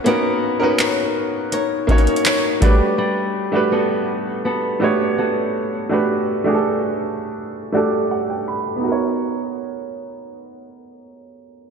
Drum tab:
HH |x-------x-------x---xxxxx---x---|--------------------------------|--------------------------------|--------------------------------|
CP |--------x---------------x-------|--------------------------------|--------------------------------|--------------------------------|
BD |--------------------o-------o---|--------------------------------|--------------------------------|--------------------------------|